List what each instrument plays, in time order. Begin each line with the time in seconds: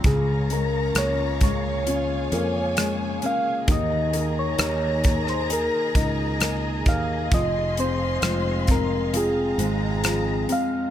Already playing: steel-string acoustic guitar C4 F4 G4
0.04 fretless electric bass C#2, steel-string acoustic guitar C#3, upright piano C#3, string section G#4 C#5 F5 A#5, soft synth lead G#4, kick, closed hi-hat
0.50 upright piano G#3, soft synth lead A#4, closed hi-hat
0.95 fretless electric bass C#2, steel-string acoustic guitar A#3 F4 G#4, upright piano A#3, soft synth lead C#5, cross-stick, closed hi-hat
1.41 upright piano G#3, soft synth lead C#5, kick, closed hi-hat
1.86 upright piano C#4, steel-string acoustic guitar F4, string section G#5, closed hi-hat
2.32 fretless electric bass F2, steel-string acoustic guitar A#3 F4 G#4, upright piano A#3, closed hi-hat
2.77 upright piano G#3, steel-string acoustic guitar G#4, cross-stick, closed hi-hat
3.22 steel-string acoustic guitar A#3, upright piano C#4, closed hi-hat
3.26 soft synth lead F5
3.68 fretless electric bass D#2, steel-string acoustic guitar D#3, upright piano D#3, string section A#4 D#5 A#5, soft synth lead D#5, kick, closed hi-hat
4.13 upright piano A#3, closed hi-hat
4.39 soft synth lead C#5
4.58 fretless electric bass D#2, steel-string acoustic guitar A#3 D#4 G#4, upright piano D#4, cross-stick, closed hi-hat
5.04 upright piano A#3, kick, closed hi-hat
5.27 soft synth lead C5, cross-stick
5.49 steel-string acoustic guitar D#4, upright piano G#4, soft synth lead A#4, closed hi-hat
5.95 fretless electric bass C#2, steel-string acoustic guitar A#3 D#4 G#4, upright piano D#4, kick, closed hi-hat
6.40 upright piano A#3, steel-string acoustic guitar G#4, cross-stick, closed hi-hat
6.86 fretless electric bass D#2, steel-string acoustic guitar A#3, upright piano G#4, soft synth lead F5, kick, closed hi-hat
7.31 fretless electric bass F1, steel-string acoustic guitar F2, upright piano F3, soft synth lead D#5, string section F5 C6, kick, closed hi-hat
7.77 upright piano C4, soft synth lead C5, closed hi-hat
8.22 fretless electric bass F1, upright piano F3, steel-string acoustic guitar G#3 C4 G#4, cross-stick, closed hi-hat
8.67 upright piano C4, soft synth lead A#4, kick, closed hi-hat
9.13 upright piano F3, steel-string acoustic guitar C4, soft synth lead G#4, string section A#5, closed hi-hat
9.58 fretless electric bass G#1, steel-string acoustic guitar G#3 C4 G#4, upright piano C4, closed hi-hat
10.04 upright piano F3, cross-stick, closed hi-hat
10.49 steel-string acoustic guitar G#3, upright piano C4, soft synth lead F5, closed hi-hat